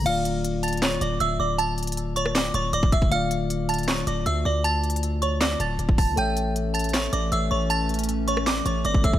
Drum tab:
CC |x-----------------------------------------------------------------------------------------------|------------------------------------------------------------------------------------------------|------------------------------------------------------------------------------------------------|------------------------------------------------------------------------------------------------|
HH |x-----------x-----------x-----------x--x--x--x--x-----------x-----------x-----------------------|x-----------x--x--x--x--x-----------x-----------x-----------x-----------x-----------x-----------|x-----------x-----------x-----------x--x--x--x--x-----------x-----------x-----------------------|x-----------x---x---x---x-----------x-----------x-----------x-----------x-----------o-----------|
CP |------------------------------------------------x-----------------------------------------------|------------------------------------------------x-----------------------------------------------|------------------------------------------------x-----------------------------------------------|------------------------------------------------x-----------------------------------------------|
SD |------------------------------------------------o-----------------------------------------------|------------------------------------------r-----o-----------------------------------------------|------------------------------------------------o-----------------------------------------------|------------------------------------------------o-----------------------------------------------|
BD |------------------------------------------------------------------------------------------------|------------------------------------------------------------------------------o-----o-----o-----|------------------------------------------------------------------------------------------------|------------------------------------------------------------------------------o-----o-----------|

CC |------------------------------------------------------------------------------------------------|------------------------------------------------------------------------------------------------|
HH |x-----------x-----------x-----------x--x--x--x--x-----------x-----------x-----------------------|x-----------x--x--x--x--x-----------x-----------x-----------x-----------x-----------x-----------|
CP |------------------------------------------------x-----------------------------------------------|------------------------------------------------x-----------------------------------------------|
SD |------------------------------------------------o-----------------------------------------------|------------------------------------------r-----o-----------------------------------------------|
BD |------------------------------------------------------------------------------------------------|------------------------------------------------------------------------------o-----o-----o-----|